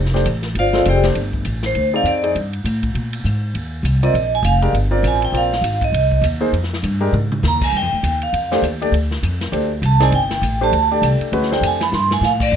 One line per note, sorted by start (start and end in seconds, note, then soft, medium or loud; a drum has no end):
0.00 0.25 F1 medium
0.05 snare soft
0.14 0.24 A3 medium
0.14 0.24 D4 medium
0.14 0.25 G4 medium
0.14 0.25 C5 medium
0.14 snare soft
0.26 0.54 A1 medium
0.26 hi-hat pedal soft
0.26 ride medium
0.43 snare soft
0.43 ride soft
0.55 0.84 G1 medium
0.55 0.85 F5 medium
0.55 ride medium
0.59 0.85 F4 medium
0.59 0.86 C5 medium
0.59 0.86 D5 medium
0.73 1.02 G#3 medium
0.73 1.02 C4 medium
0.73 1.02 F4 medium
0.73 1.02 A4 medium
0.73 snare medium
0.85 1.15 F1 medium
0.85 0.99 C5 medium
0.85 0.99 D5 medium
0.85 0.99 G5 medium
0.85 hi-hat pedal medium
0.85 ride medium
0.90 1.00 G4 medium
1.03 1.14 A3 medium
1.03 1.15 D4 medium
1.03 1.15 G4 medium
1.03 1.15 C5 medium
1.03 snare medium
1.03 ride soft
1.15 1.45 G1 medium
1.15 ride medium
1.33 kick soft
1.45 1.74 A1 medium
1.45 hi-hat pedal soft
1.45 ride medium
1.63 1.93 C5 medium
1.63 snare soft
1.63 ride soft
1.75 2.03 D2 medium
1.75 ride medium
1.93 2.21 C4 medium
1.93 2.22 D#4 medium
1.93 2.21 G#4 medium
1.93 2.22 D5 medium
1.93 2.06 F5 loud
2.03 2.33 F2 medium
2.03 hi-hat pedal medium
2.03 ride medium
2.08 2.34 D5 medium
2.24 2.34 C4 medium
2.24 2.34 D#4 medium
2.24 2.34 G#4 medium
2.24 2.34 D5 medium
2.24 ride soft
2.35 2.64 G2 medium
2.35 ride medium
2.53 ride soft
2.64 2.94 A2 medium
2.64 hi-hat pedal medium
2.64 ride medium
2.83 kick medium
2.83 ride soft
2.95 3.24 A#2 medium
2.95 ride soft
3.13 ride medium
3.24 3.53 G#2 medium
3.24 hi-hat pedal medium
3.54 3.82 D#2 medium
3.54 ride medium
3.83 4.13 C2 medium
3.83 hi-hat pedal medium
3.83 ride medium
4.03 4.13 C4 medium
4.03 4.13 F4 medium
4.03 4.13 A#4 medium
4.03 4.13 D5 medium
4.03 4.31 D#5 medium
4.03 ride soft
4.14 4.42 A#1 medium
4.14 ride medium
4.35 4.45 G#5 loud
4.43 4.72 F1 medium
4.43 4.72 F5 medium
4.43 hi-hat pedal medium
4.43 ride medium
4.62 4.73 G#3 medium
4.62 4.73 D4 medium
4.62 4.73 G4 medium
4.62 4.73 A#4 medium
4.62 ride soft
4.73 5.02 G1 medium
4.73 ride medium
4.91 5.31 C4 medium
4.91 5.31 F4 medium
4.91 5.31 A#4 medium
4.91 5.31 D5 medium
5.03 5.32 A1 medium
5.03 hi-hat pedal medium
5.03 ride medium
5.07 5.23 G#5 medium
5.22 5.35 G5 medium
5.22 ride soft
5.32 5.61 A#1 medium
5.32 5.50 C4 medium
5.32 5.50 F4 medium
5.32 5.50 A#4 medium
5.32 5.50 D5 medium
5.32 ride medium
5.37 5.80 F5 medium
5.53 snare soft
5.61 5.92 G#1 medium
5.61 hi-hat pedal medium
5.61 ride medium
5.81 6.22 D#5 medium
5.81 kick medium
5.81 ride soft
5.92 6.21 C2 medium
5.92 ride medium
6.11 kick soft
6.21 6.52 D#2 medium
6.21 hi-hat pedal soft
6.21 ride medium
6.40 6.52 A#3 medium
6.40 6.52 D#4 medium
6.40 6.52 G#4 medium
6.40 6.52 C5 medium
6.52 6.82 F2 medium
6.52 ride medium
6.63 snare soft
6.73 snare soft
6.83 7.12 G2 medium
6.83 hi-hat pedal medium
6.83 ride medium
7.01 7.12 G#3 medium
7.01 7.12 D4 medium
7.01 7.12 G4 medium
7.01 7.12 A#4 medium
7.13 7.42 G#2 medium
7.13 mid tom medium
7.32 mid tom medium
7.43 7.72 D#2 medium
7.43 snare medium
7.43 hi-hat pedal medium
7.48 7.63 A#5 medium
7.61 7.74 G#5 medium
7.61 kick medium
7.61 crash medium
7.73 7.82 G2 medium
7.77 8.20 G5 loud
7.82 7.92 F2 medium
7.93 8.02 D2 medium
8.03 8.32 D#2 medium
8.03 hi-hat pedal medium
8.03 ride medium
8.22 8.61 F5 medium
8.22 ride soft
8.33 8.61 F2 medium
8.33 ride medium
8.51 8.62 A3 medium
8.51 8.62 D4 medium
8.51 8.62 G4 medium
8.51 8.62 C5 medium
8.51 snare soft
8.51 ride soft
8.62 8.91 D#2 medium
8.62 hi-hat pedal medium
8.62 ride medium
8.82 8.92 A3 medium
8.82 8.92 D4 medium
8.82 8.92 G4 medium
8.82 8.92 D5 medium
8.82 ride soft
8.92 9.21 D2 medium
8.92 ride medium
9.11 snare soft
9.23 9.51 F2 medium
9.23 hi-hat pedal medium
9.23 ride medium
9.41 snare soft
9.41 ride soft
9.52 9.81 D2 medium
9.52 9.69 A3 medium
9.52 9.69 D4 medium
9.52 9.69 G4 medium
9.52 9.69 C5 medium
9.52 ride medium
9.82 10.11 C2 loud
9.82 10.02 A5 loud
9.82 hi-hat pedal medium
9.82 ride medium
10.00 10.11 C4 medium
10.00 10.11 D#4 medium
10.00 10.11 G#4 medium
10.00 10.11 D5 medium
10.00 10.13 G#5 medium
10.00 snare soft
10.00 ride soft
10.11 10.41 G1 medium
10.11 10.58 G5 medium
10.11 ride medium
10.31 snare soft
10.31 ride medium
10.41 10.71 A1 medium
10.41 hi-hat pedal medium
10.41 ride medium
10.61 10.71 A3 medium
10.61 10.72 D4 medium
10.61 10.72 G4 medium
10.61 10.72 C5 medium
10.61 11.01 A5 medium
10.72 11.01 D2 medium
10.72 ride medium
10.91 11.30 A3 medium
10.91 11.30 D4 medium
10.91 11.31 G4 medium
10.91 11.31 D5 medium
11.02 11.19 C2 medium
11.02 hi-hat pedal medium
11.02 ride medium
11.21 muted upright bass stroke soft
11.21 ride soft
11.32 11.61 D2 medium
11.32 11.49 G#3 medium
11.32 11.49 C#4 medium
11.32 11.49 F#4 medium
11.32 11.49 B4 medium
11.32 ride medium
11.43 snare soft
11.51 11.77 A3 medium
11.51 11.77 D4 medium
11.51 11.77 G4 medium
11.51 11.77 C5 medium
11.51 11.63 G5 medium
11.51 snare soft
11.61 11.91 F2 medium
11.61 hi-hat pedal medium
11.61 ride medium
11.66 11.82 G#5 medium
11.81 11.93 B5 loud
11.81 snare medium
11.81 ride soft
11.92 12.20 G2 medium
11.92 12.11 C6 loud
11.92 snare medium
12.11 12.23 G#5 loud
12.11 snare medium
12.21 12.51 A2 medium
12.21 12.41 F5 medium
12.21 snare medium
12.21 hi-hat pedal medium
12.40 12.53 D5 medium
12.40 kick medium
12.40 crash medium
12.52 12.56 F2 medium